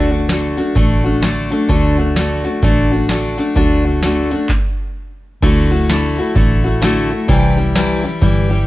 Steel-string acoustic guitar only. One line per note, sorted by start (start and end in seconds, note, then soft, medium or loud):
0.00 0.11 D3 medium
0.00 0.11 A3 medium
0.00 0.11 D4 medium
0.11 0.28 A3 soft
0.11 0.29 D4 medium
0.11 0.29 F#4 medium
0.29 0.58 D3 medium
0.29 0.58 A3 medium
0.29 0.57 D4 medium
0.29 0.56 F#4 medium
0.57 0.75 A3 soft
0.57 0.75 D4 soft
0.57 0.76 F#4 medium
0.75 1.04 D3 medium
0.75 1.05 A3 medium
0.75 1.04 D4 medium
0.75 1.03 F#4 medium
1.04 1.22 A3 soft
1.04 1.22 D4 soft
1.04 1.22 F#4 medium
1.22 1.51 D3 medium
1.22 1.51 A3 medium
1.22 1.51 D4 medium
1.22 1.49 F#4 medium
1.51 1.68 A3 soft
1.51 1.69 D4 soft
1.51 1.69 F#4 medium
1.69 1.98 D3 medium
1.69 1.98 A3 medium
1.69 1.98 D4 medium
1.69 1.97 F#4 medium
1.98 2.15 A3 soft
1.98 2.16 D4 medium
1.98 2.16 F#4 medium
2.16 2.45 D3 medium
2.16 2.45 A3 medium
2.16 2.44 D4 medium
2.16 2.43 F#4 medium
2.44 2.62 A3 soft
2.44 2.63 D4 soft
2.44 2.62 F#4 medium
2.63 2.91 D3 medium
2.63 2.92 A3 medium
2.63 2.91 D4 medium
2.63 2.90 F#4 medium
2.91 3.09 A3 soft
2.91 3.09 D4 medium
2.91 3.09 F#4 medium
3.09 3.38 D3 medium
3.09 3.38 A3 medium
3.09 3.38 D4 medium
3.09 3.36 F#4 medium
3.38 3.55 A3 soft
3.38 3.55 D4 medium
3.38 3.56 F#4 medium
3.56 3.85 D3 medium
3.56 3.85 A3 medium
3.56 3.85 D4 medium
3.56 3.83 F#4 medium
3.85 4.02 A3 soft
3.85 4.03 D4 soft
3.85 4.03 F#4 medium
4.03 4.31 D3 medium
4.03 4.32 A3 medium
4.03 4.31 D4 medium
4.03 4.30 F#4 medium
4.31 4.50 A3 soft
4.31 4.50 D4 medium
4.31 4.49 F#4 medium
5.42 5.71 D3 medium
5.42 5.71 A3 medium
5.42 5.71 E4 medium
5.42 5.70 F#4 loud
5.71 5.89 A3 medium
5.71 5.89 E4 medium
5.71 5.89 F#4 medium
5.89 6.18 D3 medium
5.89 6.18 A3 medium
5.89 6.18 E4 medium
5.89 6.17 F#4 medium
6.18 6.35 A3 soft
6.18 6.36 E4 medium
6.18 6.36 F#4 medium
6.35 6.64 D3 medium
6.35 6.65 A3 medium
6.35 6.64 E4 medium
6.35 6.63 F#4 medium
6.64 6.81 A3 soft
6.64 6.82 E4 medium
6.64 6.82 F#4 medium
6.82 7.11 D3 medium
6.82 7.11 A3 loud
6.82 7.11 E4 medium
6.82 7.09 F#4 loud
7.10 7.29 A3 medium
7.10 7.28 E4 medium
7.10 7.29 F#4 medium
7.28 7.57 C3 medium
7.28 7.57 E3 medium
7.28 7.58 G3 loud
7.28 7.57 E4 medium
7.28 7.56 G4 loud
7.57 7.74 G3 medium
7.57 7.75 E4 medium
7.57 7.75 G4 medium
7.75 8.04 C3 medium
7.75 8.04 E3 medium
7.75 8.04 G3 medium
7.75 8.04 E4 medium
7.75 8.03 G4 medium
8.04 8.21 G3 soft
8.04 8.22 E4 medium
8.04 8.22 G4 medium
8.21 8.50 E3 medium
8.21 8.51 G3 medium
8.21 8.50 E4 medium
8.21 8.49 G4 medium
8.50 8.67 G3 medium
8.50 8.67 E4 medium
8.50 8.67 G4 medium